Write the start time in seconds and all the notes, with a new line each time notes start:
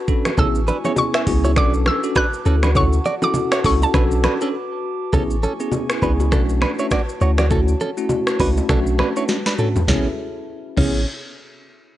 Already playing: F#4 B4 A5
0.08 C#4 D4 F#4 A4, kick, shaker
0.25 finger snap, cross-stick, low bongo, shaker
0.37 A1 A3 B3 C#4 E4 G#4 A4 G#5 C#6 E6, kick, low conga, shaker
0.55 shaker
0.68 D4 B4, low bongo, shaker
0.84 B3 C#4 E4 G#4 C#5, low bongo, shaker
0.96 C#6, high bongo, low conga, shaker
1.14 G#4 E5, finger snap, cross-stick, shaker
1.27 C#2 B3 C#4 E4 G#4, kick, open hi-hat, high bongo, shaker
1.44 E4 C#5, high bongo, shaker
1.56 B1 C#4 D4 F#4 A4 B4 D5 A5 D6, finger snap, kick, cross-stick, low conga, shaker
1.74 shaker
1.86 E6, finger snap, cross-stick, low bongo
2.03 C#4 D4 F#4 A4, shaker
2.15 D4 B4 F#6, finger snap, kick, cross-stick, high bongo, shaker
2.34 shaker
2.46 D2 C#4 E4 F#4 A4 F#5, shaker
2.63 D4 B4, finger snap, cross-stick, low bongo, shaker
2.75 C#4 E4 F#4 A4 C#5 C#6, kick, low conga, shaker
2.93 shaker
3.05 F#4 D5, low bongo, shaker
3.22 C#4 E4 F#4 A4 D6, low bongo, shaker
3.34 high bongo, low conga, shaker
3.52 E4 C#5, finger snap, cross-stick, shaker
3.64 C#2 C#4 E4 F#4 A4 C#6, kick, open hi-hat, high bongo, shaker
3.82 A5, high bongo, shaker
3.94 B1 C#4 D4 F#4 A4 B4 D6, finger snap, kick, cross-stick, low conga, shaker
4.11 shaker
4.24 D4 B4, finger snap, cross-stick, low bongo, shaker
4.41 C#4 D4 F#4 A4, shaker
5.13 A1 A3 B3 C#4 E4 G#4 A4 G#5 C#6, kick, low conga, shaker
5.31 shaker
5.43 C#4 A4, low bongo, shaker
5.60 B3 C#4 E4 G#4, shaker
5.72 high bongo, low conga, shaker
5.89 finger snap, cross-stick, shaker
6.02 C#2 B3 C#4 D4 E4 G#4 B4, kick, high bongo, shaker
6.20 high bongo, shaker
6.32 B1 A3 C#4 D4 F#4 A4 B4 A5, finger snap, kick, cross-stick, low conga, shaker
6.49 shaker
6.61 D4 B4, finger snap, cross-stick, low bongo
6.79 A3 C#4 D4 E4 F#4 C#5, shaker
6.91 F#4 D5, finger snap, kick, cross-stick, high bongo, shaker
7.09 shaker
7.21 D2 A3 C#4 E4 F#4 C#5, shaker
7.38 F#4 D5, finger snap, cross-stick, low bongo, shaker
7.50 A3 C#4 E4 F#4 A4, kick, low conga, shaker
7.68 shaker
7.81 C#4 A4, low bongo, shaker
7.97 A3 C#4 E4 F#4, shaker
8.09 high bongo, low conga, shaker
8.27 finger snap, cross-stick, shaker
8.39 C#2 A3 C#4 D4 E4 F#4 B4, kick, open hi-hat, high bongo, shaker
8.57 high bongo, shaker
8.69 B1 A3 C#4 D4 F#4 A4 B4, finger snap, kick, cross-stick, low conga, shaker
8.87 shaker
8.99 D4 B4, finger snap, cross-stick, low bongo
9.16 A3 C#4 D4 E4 F#4 C#5, shaker
9.28 snare, high bongo, shaker
9.46 D4 B4, snare, shaker
9.58 A3 C#4 D4 F#4 A4, mid tom, shaker
9.76 floor tom, low bongo, shaker
9.88 A1 B3 C#4 E4 G#4 A4 E5, kick, snare, low conga
10.77 A1 B3 C#4 E4 G#4, kick, crash, low conga